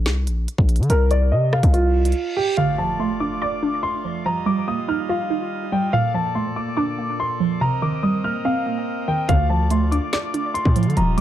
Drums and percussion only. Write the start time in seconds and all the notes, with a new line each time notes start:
0.06 snare
0.27 closed hi-hat
0.48 closed hi-hat
0.58 kick
0.69 closed hi-hat
0.76 closed hi-hat
0.83 closed hi-hat
0.90 closed hi-hat
1.11 closed hi-hat
1.53 cross-stick
1.63 kick, closed hi-hat
1.74 closed hi-hat
2.05 closed hi-hat
2.12 closed hi-hat
9.29 kick, closed hi-hat
9.70 closed hi-hat
9.92 closed hi-hat
10.13 snare
10.34 closed hi-hat
10.55 closed hi-hat
10.65 kick
10.76 closed hi-hat
10.83 closed hi-hat
10.90 closed hi-hat
10.97 closed hi-hat